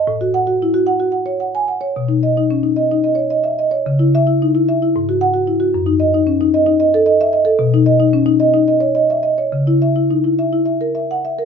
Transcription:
\new Staff \with { instrumentName = "Marimba" } { \time 7/8 \key b \mixolydian \tempo 4 = 110 << { r2 r8. gis''16 r8 | r2 r8. e''16 r8 | r8 e''8 r4. fis''8 r8 | r2 r8. e''16 r8 |
r2 r8. e''16 r8 | r2 r8. fis''16 r8 | } \\ { a,16 fis'16 fis''16 fis'16 e'16 fis'16 fis''16 fis'16 fis''16 cis''16 fis''8 fis''16 cis''16 | b,16 dis'16 dis''16 dis'16 cis'16 dis'16 dis''16 dis'16 dis''16 cis''16 dis''8 dis''16 cis''16 | cis16 e'8 e'16 dis'16 e'16 e''16 e'16 gis,16 fis'8 fis'16 e'16 fis'16 | fis,16 dis'16 dis''16 dis'16 cis'16 dis'16 dis''16 dis'16 dis''16 a'16 dis''8 dis''16 a'16 |
b,16 dis'16 dis''16 dis'16 cis'16 dis'16 dis''16 dis'16 dis''16 cis''16 dis''8 dis''16 cis''16 | cis16 e'16 e''16 e'16 dis'16 e'16 e''16 e'16 e''16 ais'16 e''8 e''16 ais'16 | } >> }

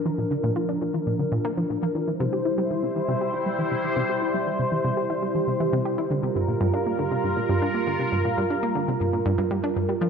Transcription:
<<
  \new Staff \with { instrumentName = "Analog synth pad" } { \time 4/4 \key c \mixolydian \tempo 4 = 119 << { <d' bes'>1 | <e' c''>1~ | <e' c''>1 | <f' bes'>1~ |
<f' bes'>1 | } \\ { f1 | g1~ | g1~ | g1~ |
g1 | } >> }
  \new Staff \with { instrumentName = "Synth arpeggio sound" } { \clef bass \time 4/4 \key c \mixolydian e16 bes,16 d16 bes,16 f'16 d'16 f16 e16 bes,16 d16 bes,16 bes16 f16 bes,16 f16 e16 | e16 c16 g'16 e'16 g16 e16 c16 e16 c16 g'16 e'16 g16 e16 c16 e16 c16 | g'16 e'16 g16 e16 c16 e16 c16 g'16 e'16 g16 e16 c16 e16 c16 g'16 e'16 | d16 c16 g,16 bes,16 g,16 d'16 bes16 d16 c16 g,16 bes,16 g,16 d'16 bes16 d16 c16 |
g,16 bes,16 g,16 d'16 bes16 d16 c16 g,16 bes,16 g,16 g,16 g,16 d'16 g,16 g16 f16 | }
>>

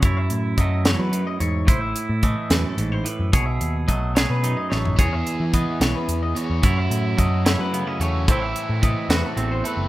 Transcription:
<<
  \new Staff \with { instrumentName = "Clean electric guitar" } { \time 6/8 \key fis \dorian \tempo 4. = 73 cis''16 e''8 r16 dis''8 cis''16 b'8 dis''16 cis''8 | c''16 e''8 r16 dis''8 b'16 a'8 c''16 b'8 | cis''16 e''8 r16 dis''8 cis''16 b'8 dis''16 cis''8 | cis''16 e''8 r16 dis''8 cis''16 b'8 dis''16 cis''8 |
cis''16 e''8 r16 dis''8 cis''16 b'8 dis''16 cis''8 | c''16 e''8 r16 dis''8 b'16 a'8 c''16 b'8 | }
  \new Staff \with { instrumentName = "Overdriven electric guitar" } { \time 6/8 \key fis \dorian r2. | r2. | r2. | <e b e' gis'>2~ <e b e' gis'>8 <e b e' gis'>8 |
<fis a cis' fis'>2~ <fis a cis' fis'>8 <fis a cis' fis'>8 | <a, e a c' e'>2~ <a, e a c' e'>8 <a, e a c' e'>8 | }
  \new Staff \with { instrumentName = "Clean electric guitar" } { \time 6/8 \key fis \dorian << { e'4 a2 | e'4 a2 | gis'4 a8 gis'8 dis'8 a8 | gis'4 b2 |
e'4 a8 e'8 b16 cis'16 a8 | <e a c' e'>4 a8 fis'8 c'8 a8 | } \\ { fis,4 fis8 e,8 fis,8 gis,8 | a,4 e8 fis,8 gis,8 a,8 | b,4 fis4 fis,4 | e,4 e4. e,8 |
fis,4 fis4 cis4 | a,4 e4 e,4 | } >> }
  \new Staff \with { instrumentName = "Picked electric bass" } { \clef bass \time 6/8 \key fis \dorian fis,8 a,8 fis,8. fis8 r16 e,8 | a,,8 r16 a,8 r16 e,16 r16 a,,8 r16 fis,16 | b,,8 dis,8 b,,8. b,8 r16 a,,8 | e,8 r16 e8 r16 b,,16 r16 e,8 r16 e,16 |
fis,8 a,8 fis,8. fis8 r16 e,8 | a,,8 r16 a,8 r16 e,16 r16 a,,8 r16 fis,,16 | }
  \new DrumStaff \with { instrumentName = "Drums" } \drummode { \time 6/8 <hh bd>8 hh8 <hh bd>8 <hh sn>8 hh8 hh8 | <hh bd>8 hh8 <hh bd>8 <hh sn>8 hh8 hh8 | <hh bd>8 hh8 <hh bd>8 <hh sn>8 hh8 sn16 tomfh16 | <hh bd>8 hh8 <hh bd>8 <hh sn>8 hh8 hh8 |
<hh bd>8 hh8 <hh bd>8 <hh sn>8 hh8 hh8 | <hh bd>8 hh8 <hh bd>8 <hh sn>8 hh8 hh8 | }
>>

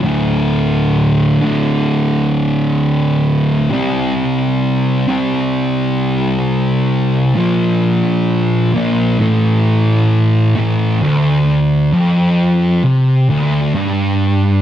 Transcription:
\new Staff \with { instrumentName = "Distorted electric guitar" } { \clef bass \time 4/4 \key d \minor \tempo 4 = 66 <d, a, d>4. <d, a, d>2~ <d, a, d>8 | <c g c'>4. <c g c'>2~ <c g c'>8 | <bes, f bes>4. <bes, f bes>8 <a, e a>4. <a, e a>8 | d,4 f,4 c8 d,8 g,4 | }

